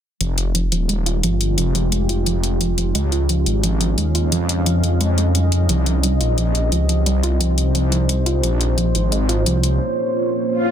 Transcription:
0.21 detuned saw bass F1, synth pluck F3, ambient pad G#3 F4 G4, closed hi-hat
0.38 closed hi-hat
0.55 synth pluck F3, closed hi-hat
0.72 detuned saw bass D#1, synth pluck F3, closed hi-hat
0.89 synth pluck G#3, closed hi-hat
1.06 synth pluck F4, closed hi-hat
1.23 detuned saw bass G1, synth pluck F3, closed hi-hat
1.41 closed hi-hat
1.58 detuned saw bass F1, synth pluck F3, closed hi-hat
1.75 synth pluck F3, closed hi-hat
1.92 synth pluck G#3, closed hi-hat
2.09 synth pluck F4, closed hi-hat
2.26 synth pluck F3, closed hi-hat
2.44 closed hi-hat
2.61 synth pluck F3, closed hi-hat
2.78 synth pluck F3, closed hi-hat
2.95 detuned saw bass C#2, synth pluck G#3, ambient pad C#4 G#4 D#5 F5, closed hi-hat
3.12 synth pluck F4, closed hi-hat
3.29 synth pluck F3, closed hi-hat
3.46 detuned saw bass G#1, closed hi-hat
3.63 synth pluck F3, closed hi-hat
3.81 synth pluck F3, closed hi-hat
3.98 detuned saw bass D#2, synth pluck G#3, closed hi-hat
4.15 synth pluck F4, closed hi-hat
4.32 detuned saw bass F2, synth pluck F3, closed hi-hat
4.49 closed hi-hat
4.66 synth pluck F3, closed hi-hat
4.83 synth pluck F3, closed hi-hat
5.01 synth pluck G#3, closed hi-hat
5.18 synth pluck G#3, closed hi-hat
5.35 synth pluck G3, closed hi-hat
5.52 closed hi-hat
5.69 detuned saw bass C2, synth pluck F3, ambient pad C4 G4 C5, closed hi-hat
5.86 synth pluck F3, closed hi-hat
6.03 synth pluck G3, closed hi-hat
6.21 detuned saw bass A#1, synth pluck F4, closed hi-hat
6.38 synth pluck F3, closed hi-hat
6.55 closed hi-hat
6.72 detuned saw bass C#2, synth pluck F3, closed hi-hat
6.89 synth pluck F3, closed hi-hat
7.06 detuned saw bass C2, synth pluck G3, closed hi-hat
7.23 synth pluck F4, closed hi-hat
7.41 synth pluck F3, closed hi-hat
7.58 closed hi-hat
7.75 synth pluck F3, closed hi-hat
7.92 synth pluck F3, closed hi-hat
8.09 synth pluck G3, closed hi-hat
8.26 synth pluck F4, closed hi-hat
8.43 detuned saw bass A#1, synth pluck F3, ambient pad A#3 F4 C#5, closed hi-hat
8.61 closed hi-hat
8.78 synth pluck F3, closed hi-hat
8.95 detuned saw bass G#1, synth pluck F3, closed hi-hat
9.12 synth pluck G#3, closed hi-hat
9.29 synth pluck F4, closed hi-hat
9.46 detuned saw bass C2, synth pluck F3, closed hi-hat
9.63 closed hi-hat
10.49 swell

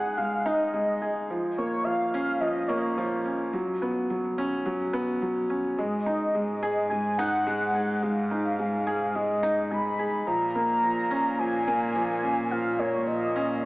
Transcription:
Already playing: felt piano G#3 D#4 G#4, soft synth lead F#5
0.17 felt piano G#3, soft synth lead F5
0.45 felt piano D#4, soft synth lead D#5
0.74 felt piano G#3
1.02 felt piano G#4
1.30 felt piano F3
1.57 felt piano A#3, soft synth lead C#5
1.84 felt piano F3, soft synth lead F5
2.14 felt piano C#4
2.40 felt piano F3, soft synth lead D#5
2.68 felt piano A#3, soft synth lead C#5
2.98 felt piano F3
3.26 felt piano C#4
3.53 felt piano F#3
3.82 felt piano B3
4.10 felt piano F#3
4.38 felt piano C#4
4.66 felt piano F#3
4.93 felt piano B3
5.22 felt piano F#3
5.50 felt piano C#4
5.78 cello section G#2, felt piano G#3, soft synth lead D#5
6.06 felt piano D#4
6.35 felt piano G#3
6.63 felt piano G#4
6.90 felt piano G#3, soft synth lead G#5
7.18 felt piano D#4, soft synth lead F#5
7.47 felt piano G#3
7.75 felt piano G#4
8.03 felt piano G#3, soft synth lead F5
8.31 felt piano D#4
8.59 felt piano G#3
8.87 felt piano G#4
9.15 felt piano G#3, soft synth lead D#5
9.43 felt piano D#4
9.71 felt piano G#3, soft synth lead B5
9.99 felt piano G#4
10.27 cello section A#2, felt piano F3, soft synth lead A#5
10.55 felt piano A#3
10.83 felt piano F3
11.11 felt piano C#4
11.39 felt piano F3, soft synth lead G#5
11.67 felt piano A#3
11.95 felt piano F3
12.23 felt piano C#4
12.51 felt piano F3, soft synth lead F5
12.79 felt piano A#3, soft synth lead C#5
13.07 felt piano F3, soft synth lead D#5
13.36 felt piano C#4

